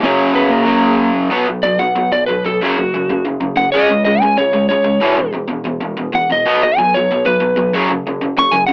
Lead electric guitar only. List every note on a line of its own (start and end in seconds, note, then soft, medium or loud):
0.04 0.33 C#4 medium
0.04 0.35 C#5 loud
0.34 0.49 B3 medium
0.34 0.52 B4 medium
0.50 1.11 A#3 medium
0.50 1.16 A#4 medium
1.63 1.79 D5 loud
1.79 2.11 F#5 medium
2.12 2.26 D5 medium
2.26 2.43 B4 medium
2.46 2.63 A4 medium
2.63 3.24 F#4 medium
3.57 3.71 F#5 loud
3.72 4.04 D#5 medium
4.05 4.21 D#5 medium
4.21 4.36 G#5 medium
4.38 4.68 C#5 loud
4.69 5.31 C#5 medium
6.15 6.30 F#5 loud
6.32 6.62 D#5 medium
6.63 6.77 D#5 loud
6.77 6.93 G#5 loud
6.94 7.26 C#5 medium
7.26 7.73 B4 loud
8.39 8.55 C#6 loud
8.51 8.66 G#5 medium
8.67 8.73 F#5 medium